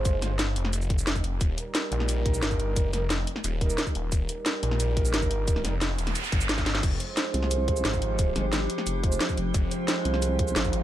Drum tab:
CC |----------------|----------------|----------------|----------------|
HH |x-x-x-x-x-x-x-x-|x-x-x-x-x-x-x-x-|x-x-x-x-x-x-x-x-|x-x-x-x-x-x-x-x-|
SH |x-x-x-x-xx-xxx--|x-x-x---x--xxx--|x-x-x---x--xxx--|x-x-x---x--xxx--|
SD |--o-o--o----o---|----o--o----o---|--o-o--o----o---|----o--o----o---|
BD |o---------o--o--|o---------o--o--|o---------o--o--|o---------o--o--|

CC |----------------|x---------------|----------------|----------------|
HH |x-x-x-xxx-x-x-xx|x-x-x-x-x-x-x-x-|x-x-x-x-x-x-x-x-|x-x-x-x-x-x-x-x-|
SH |x-x-x-x-xx-xxx--|x-x-x---x--xxx--|x-x-x---x--xxx--|x-x-x---x--xxx--|
SD |-oo-o--o----oooo|----o--o----o---|--o-o--o----o---|----o--o----o---|
BD |o---------o--o--|o---------o--o--|o---------o--o--|o---------o--o--|